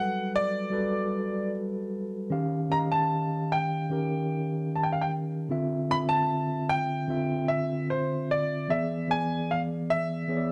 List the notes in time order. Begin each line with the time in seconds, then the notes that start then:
Already playing: F#3 G3 F#4 A4 B4 F#5
0.36 D5
0.70 G3 F#4 A4 B4
2.30 D#3 C#4 G4 F5
2.69 D#3 C#4 G4 D#5 A#5
2.79 F5
2.92 A5
3.52 G5
3.90 D#3 C#4 G4 A#4
4.76 A5
4.83 G5
4.93 F5
5.01 G5
5.49 D3 C4 F4 E5
5.89 D3 C4 F4 E5 B5
6.09 A5
6.69 G5
7.08 D3 C4 F4 E5
7.48 E5
7.90 C5
8.31 D5
8.68 E3 B3 G#4 D5 E5
9.07 E3 B3 G#4 D5 G#5
9.51 F5
9.90 E5
10.28 E3 B3 G#4 C#5
10.37 D5